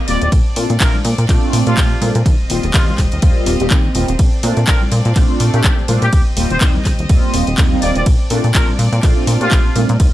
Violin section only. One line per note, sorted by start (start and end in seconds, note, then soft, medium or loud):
0.00 9.96 C4 medium
0.00 0.30 G4 medium
0.00 0.30 D#5 medium
0.32 2.24 A4 medium
0.32 2.24 D5 loud
2.26 4.17 G4 medium
2.26 4.17 D#5 loud
4.19 6.11 A4 medium
4.19 6.11 D5 medium
6.13 8.04 G4 medium
6.13 8.04 D#5 loud
8.06 9.98 A4 medium
8.06 9.98 D5 medium
10.00 10.13 C4 medium
10.00 10.13 G4 medium
10.00 10.13 D#5 loud